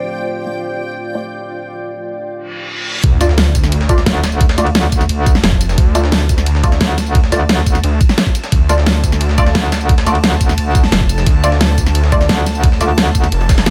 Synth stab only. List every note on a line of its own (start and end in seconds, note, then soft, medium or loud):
0.46 0.51 A3 medium
0.46 0.51 F4 medium
0.46 0.51 D5 medium
1.15 1.20 A3 medium
1.15 1.20 F4 medium
1.15 1.20 D5 loud
3.21 3.26 A3 medium
3.21 3.26 F4 medium
3.21 3.26 D5 medium
3.89 3.94 A3 medium
3.89 3.94 F4 medium
3.89 3.94 D5 loud
4.58 4.63 A3 medium
4.58 4.63 F4 medium
4.58 4.63 D5 medium
5.95 6.00 A3 medium
5.95 6.00 F4 medium
5.95 6.00 D5 medium
6.64 6.68 A3 medium
6.64 6.68 F4 medium
6.64 6.68 D5 loud
7.32 7.37 A3 medium
7.32 7.37 F4 medium
7.32 7.37 D5 medium
8.69 8.74 A3 medium
8.69 8.74 F4 medium
8.69 8.74 D5 medium
9.38 9.43 A3 medium
9.38 9.43 F4 medium
9.38 9.43 D5 loud
10.07 10.11 A3 medium
10.07 10.11 F4 medium
10.07 10.11 D5 medium
11.44 11.49 A3 medium
11.44 11.48 F4 medium
11.44 11.49 D5 medium
12.12 12.17 A3 medium
12.12 12.17 F4 medium
12.12 12.17 D5 loud
12.81 12.86 A3 medium
12.81 12.86 F4 medium
12.81 12.86 D5 medium